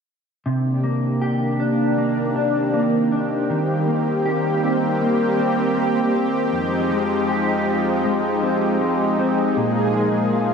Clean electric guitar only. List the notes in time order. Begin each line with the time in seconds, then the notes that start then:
0.46 C3
0.84 A#3
1.21 G4
1.60 D4
1.98 A#3
2.36 D4
2.74 A#3
3.12 D4
3.50 D#3
3.88 A#3
4.26 G4
4.63 C4
5.01 A#3
5.39 C4
5.77 A#3
6.15 C4
6.53 F2
6.91 G#3
7.29 G4
7.67 C4
8.05 G#3
8.43 C4
8.81 G#3
9.19 C4
9.57 A#2
9.95 G#3
10.33 F4